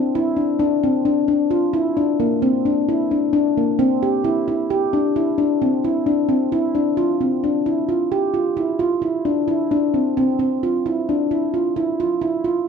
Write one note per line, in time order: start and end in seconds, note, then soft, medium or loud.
0.15 0.30 E4 medium
0.37 0.52 D4 medium
0.59 0.74 D4 medium
0.83 0.98 C4 medium
1.05 1.20 D4 medium
1.28 1.43 D4 medium
1.51 1.66 F4 medium
1.73 1.88 E4 medium
1.97 2.11 D4 medium
2.20 2.34 A#3 medium
2.42 2.57 C4 medium
2.65 2.80 D4 medium
2.89 3.03 E4 medium
3.11 3.26 D4 medium
3.33 3.48 D4 medium
3.57 3.72 A#3 medium
3.79 3.93 C4 medium
4.03 4.17 G4 medium
4.24 4.39 E4 medium
4.48 4.62 E4 medium
4.70 4.85 G4 medium
4.93 5.08 D4 medium
5.16 5.30 E4 medium
5.38 5.53 D4 medium
5.62 5.76 C4 medium
5.84 5.99 E4 medium
6.06 6.21 D4 medium
6.29 6.43 C4 medium
6.52 6.67 E4 medium
6.75 6.89 D4 medium
6.97 7.12 F4 medium
7.21 7.35 C4 medium
7.44 7.58 D4 medium
7.66 7.81 E4 medium
7.89 8.03 F4 medium
8.12 8.26 G4 medium
8.34 8.49 F4 medium
8.57 8.72 E4 medium
8.79 8.94 F4 medium
9.02 9.17 E4 medium
9.25 9.40 D4 medium
9.48 9.63 E4 medium
9.71 9.86 D4 medium
9.94 10.09 C4 medium
10.17 10.32 C4 medium
10.39 10.54 C4 medium
10.63 10.78 F4 medium
10.86 11.00 E4 medium
11.09 11.23 D4 medium
11.31 11.46 E4 medium
11.54 11.68 F4 medium
11.76 11.91 E4 medium
12.00 12.14 F4 medium
12.22 12.36 E4 medium
12.44 12.59 F4 medium